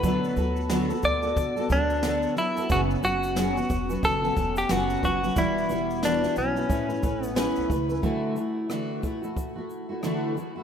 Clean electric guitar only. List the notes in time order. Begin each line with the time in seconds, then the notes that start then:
Already playing: B4
1.05 D5
1.72 D4
2.38 E4
2.72 F#4
3.05 F#4
4.05 A4
4.58 G4
4.71 F#4
5.05 F#4
5.38 E4
6.05 D4
6.38 C#4
7.25 B3